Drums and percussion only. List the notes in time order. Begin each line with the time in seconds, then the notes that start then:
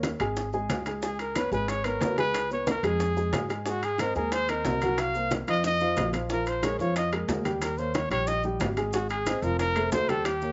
0.03 high bongo, high conga, high timbale, low timbale, maracas
0.20 high bongo, high conga, high timbale, maracas
0.37 high bongo, high conga, maracas
0.53 high bongo, high conga, maracas
0.69 high bongo, low bongo, high conga, high timbale, low timbale, maracas
0.86 high bongo, high conga, high timbale, maracas
1.02 high bongo, high conga, maracas
1.19 high bongo, high conga, high timbale, maracas
1.36 high bongo, high conga, high timbale, low timbale, maracas
1.52 high bongo, maracas
1.68 high bongo, high conga, high timbale, maracas
1.84 high bongo, high conga, high timbale, maracas
2.01 high bongo, low bongo, high conga, low timbale, maracas
2.18 high conga, high timbale, maracas
2.34 high bongo, high conga, high timbale, maracas
2.50 high conga, maracas
2.67 high bongo, high conga, high timbale, low timbale, maracas
2.84 high bongo, high conga, high timbale, maracas
3.00 high bongo, high conga, maracas
3.17 high bongo, high conga, maracas
3.33 high bongo, low bongo, high conga, high timbale, low timbale, maracas
3.49 high bongo, high conga, high timbale, maracas
3.66 high bongo, high conga, maracas
3.82 high bongo, high conga, high timbale, maracas
3.98 high bongo, high conga, high timbale, low timbale, maracas
4.15 high bongo, high conga, maracas
4.32 high bongo, high conga, high timbale, maracas
4.49 high bongo, high conga, high timbale, maracas
4.65 high bongo, low bongo, high conga, low timbale, maracas
4.82 high conga, high timbale, maracas
4.98 high bongo, high conga, high timbale, maracas
5.15 high conga, maracas
5.31 high bongo, high conga, high timbale, low timbale, maracas
5.48 high bongo, high conga, high timbale, maracas
5.64 high bongo, high conga, maracas
5.80 high conga, maracas
5.97 low bongo, high conga, high timbale, low timbale, maracas
6.13 low bongo, high conga, high timbale, maracas
6.30 high bongo, high conga, maracas
6.46 high bongo, high conga, high timbale, maracas
6.63 high bongo, high conga, high timbale, low timbale, maracas
6.79 high bongo, high conga, maracas
6.96 high bongo, high conga, high timbale, maracas
7.12 high bongo, high conga, high timbale, maracas
7.29 high bongo, low bongo, high conga, low timbale, maracas
7.45 high conga, high timbale, maracas
7.62 high bongo, high conga, high timbale, maracas
7.78 high conga, maracas
7.94 high bongo, high conga, high timbale, low timbale, maracas
8.11 high bongo, high timbale, maracas
8.27 high bongo, high conga, maracas
8.43 high bongo, maracas
8.60 high bongo, low bongo, high conga, high timbale, low timbale, maracas
8.77 high bongo, high conga, high timbale, maracas
8.93 high bongo, high conga, maracas
9.10 high bongo, high conga, high timbale, maracas
9.26 high bongo, high conga, high timbale, low timbale, maracas
9.43 high bongo, high conga, maracas
9.59 high bongo, high conga, high timbale, maracas
9.76 high bongo, high conga, high timbale, maracas
9.92 high bongo, low bongo, high conga, low timbale, maracas
10.09 high conga, high timbale, maracas
10.25 high bongo, high conga, high timbale, maracas
10.42 high conga, maracas